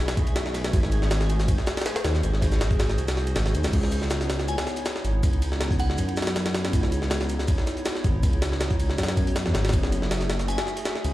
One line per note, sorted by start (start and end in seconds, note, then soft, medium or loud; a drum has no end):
0.00 0.72 B1 medium
0.00 0.71 A3 medium
0.00 0.71 F#4 medium
0.00 0.71 G#4 medium
0.00 0.71 E5 loud
0.00 3.74 G#5 medium
0.08 snare loud
0.08 ride medium
0.17 kick loud
0.17 ride medium
0.17 shaker medium
0.27 closed hi-hat soft
0.27 ride soft
0.36 snare loud
0.36 ride medium
0.36 shaker medium
0.45 snare soft
0.45 snare medium
0.54 snare loud
0.54 ride medium
0.54 shaker medium
0.64 snare loud
0.64 snare soft
0.64 ride medium
0.73 0.82 G#1 loud
0.73 kick loud
0.73 ride medium
0.73 shaker medium
0.83 1.57 G#1 medium
0.83 snare medium
0.92 ride medium
0.92 shaker medium
1.02 snare soft
1.11 snare loud
1.11 ride medium
1.11 shaker medium
1.20 snare soft
1.20 closed hi-hat soft
1.29 ride medium
1.29 shaker medium
1.39 2.21 A3 medium
1.39 2.21 F#4 medium
1.39 2.21 G#4 medium
1.39 2.21 C5 medium
1.39 snare soft
1.39 closed hi-hat soft
1.48 kick loud
1.48 ride medium
1.48 shaker loud
1.58 snare soft
1.67 snare loud
1.67 ride medium
1.67 shaker medium
1.77 snare medium
1.77 closed hi-hat soft
1.77 ride medium
1.82 snare medium
1.82 ride medium
1.82 shaker medium
1.86 snare loud
1.86 ride medium
1.96 snare loud
1.96 ride medium
2.04 2.22 D#2 medium
2.04 snare loud
2.04 ride medium
2.04 shaker medium
2.15 snare soft
2.23 2.32 G#1 loud
2.23 ride medium
2.23 shaker medium
2.33 2.97 G#1 medium
2.33 snare soft
2.42 kick loud
2.42 snare loud
2.42 ride medium
2.42 shaker medium
2.51 snare soft
2.51 snare loud
2.51 shaker medium
2.60 snare loud
2.60 ride medium
2.60 shaker medium
2.70 kick loud
2.70 closed hi-hat soft
2.79 snare loud
2.79 ride medium
2.79 shaker medium
2.89 3.71 A3 medium
2.89 3.71 F#4 medium
2.89 3.71 G#4 medium
2.89 3.71 C5 loud
2.89 snare soft
2.89 closed hi-hat soft
2.98 3.35 C2 medium
2.98 ride medium
2.98 shaker medium
3.08 snare loud
3.08 ride medium
3.08 shaker medium
3.17 snare soft
3.17 closed hi-hat soft
3.27 ride medium
3.27 shaker medium
3.35 3.56 G#1 loud
3.35 snare loud
3.35 ride medium
3.35 shaker medium
3.46 snare medium
3.46 closed hi-hat soft
3.54 3.66 D#2 medium
3.54 ride medium
3.54 shaker medium
3.64 3.72 C2 medium
3.64 snare loud
3.64 ride medium
3.64 shaker medium
3.73 3.82 C#2 loud
3.73 kick loud
3.73 crash medium
3.73 ride medium
3.73 shaker medium
3.83 4.57 C#2 medium
3.83 snare medium
3.91 ride medium
3.91 shaker medium
4.02 snare soft
4.10 snare loud
4.10 ride medium
4.10 shaker medium
4.21 snare soft
4.21 closed hi-hat soft
4.30 snare loud
4.30 ride medium
4.30 shaker medium
4.39 5.21 B3 medium
4.39 5.21 D#4 medium
4.39 5.21 E4 medium
4.39 5.21 C#5 medium
4.39 snare soft
4.39 closed hi-hat soft
4.48 5.01 G#5 medium
4.48 ride medium
4.48 shaker loud
4.58 snare loud
4.58 ride medium
4.67 snare soft
4.67 shaker medium
4.76 closed hi-hat soft
4.76 ride medium
4.85 snare loud
4.85 ride medium
4.85 shaker loud
4.96 snare soft
5.04 5.22 G#1 medium
5.04 ride medium
5.04 shaker medium
5.23 5.32 C#2 loud
5.23 kick loud
5.23 ride medium
5.23 shaker medium
5.33 5.97 C#2 medium
5.33 ride soft
5.42 ride medium
5.42 shaker medium
5.52 snare soft
5.60 snare loud
5.60 ride medium
5.60 shaker medium
5.71 kick loud
5.71 closed hi-hat soft
5.79 6.17 F#5 medium
5.79 ride medium
5.79 shaker medium
5.89 6.71 B3 medium
5.89 6.71 D#4 medium
5.89 6.71 E4 medium
5.89 6.71 C#5 loud
5.89 snare soft
5.98 6.72 F#2 medium
5.98 ride medium
5.98 shaker medium
6.09 ride soft
6.16 snare medium
6.16 ride medium
6.16 shaker medium
6.22 snare medium
6.22 ride medium
6.27 snare loud
6.27 closed hi-hat soft
6.27 ride medium
6.36 snare loud
6.36 ride medium
6.36 shaker medium
6.45 snare soft
6.45 snare loud
6.45 ride medium
6.55 snare loud
6.55 ride medium
6.55 shaker medium
6.64 snare soft
6.64 snare loud
6.64 ride medium
6.73 6.82 C#2 loud
6.73 kick loud
6.73 ride medium
6.73 shaker medium
6.83 7.57 C#2 medium
6.83 snare medium
6.92 ride medium
6.92 shaker medium
7.02 snare soft
7.10 snare loud
7.10 ride medium
7.10 shaker medium
7.20 snare soft
7.20 closed hi-hat soft
7.29 ride medium
7.29 shaker medium
7.39 8.21 B3 medium
7.39 8.21 D#4 medium
7.39 8.21 E4 medium
7.39 8.21 C#5 medium
7.39 snare soft
7.39 closed hi-hat soft
7.47 kick loud
7.47 ride medium
7.47 shaker medium
7.58 snare soft
7.67 snare soft
7.67 ride medium
7.67 shaker medium
7.77 closed hi-hat soft
7.85 snare loud
7.85 ride medium
7.85 shaker medium
7.95 snare soft
8.04 8.21 G#1 medium
8.04 kick loud
8.04 ride medium
8.04 shaker medium
8.23 8.32 C#2 loud
8.23 kick loud
8.23 ride medium
8.23 shaker medium
8.33 8.97 C#2 medium
8.33 ride soft
8.42 snare loud
8.42 ride medium
8.42 shaker medium
8.52 snare soft
8.60 snare loud
8.60 ride medium
8.60 shaker loud
8.70 kick loud
8.70 closed hi-hat soft
8.79 ride medium
8.79 shaker medium
8.90 snare soft
8.98 9.47 F#2 medium
8.98 snare medium
8.98 ride medium
8.98 shaker medium
9.03 snare medium
9.03 ride medium
9.08 snare loud
9.08 ride medium
9.17 kick medium
9.17 ride medium
9.17 shaker medium
9.27 closed hi-hat soft
9.27 ride soft
9.36 snare loud
9.36 ride medium
9.36 shaker medium
9.45 9.54 E2 loud
9.45 snare soft
9.45 snare medium
9.54 9.71 G#1 loud
9.54 snare loud
9.54 ride medium
9.54 shaker medium
9.65 snare medium
9.65 ride medium
9.69 snare medium
9.69 ride medium
9.69 shaker medium
9.73 9.82 F#1 loud
9.73 kick loud
9.73 ride medium
9.83 10.57 F#1 medium
9.83 snare medium
9.92 ride medium
9.92 shaker medium
10.02 snare soft
10.11 snare loud
10.11 ride medium
10.11 shaker medium
10.20 snare soft
10.20 closed hi-hat soft
10.30 snare loud
10.30 ride medium
10.30 shaker medium
10.39 11.13 A3 medium
10.39 11.13 F#4 medium
10.39 11.13 G#4 medium
10.39 11.13 E5 medium
10.39 snare soft
10.39 closed hi-hat soft
10.48 11.01 G#5 medium
10.48 ride medium
10.48 shaker medium
10.58 snare loud
10.58 ride medium
10.67 snare soft
10.67 shaker medium
10.77 closed hi-hat soft
10.77 ride medium
10.85 snare loud
10.85 ride medium
10.85 shaker medium
10.96 snare soft
11.04 11.13 C#2 medium
11.04 ride medium
11.04 shaker medium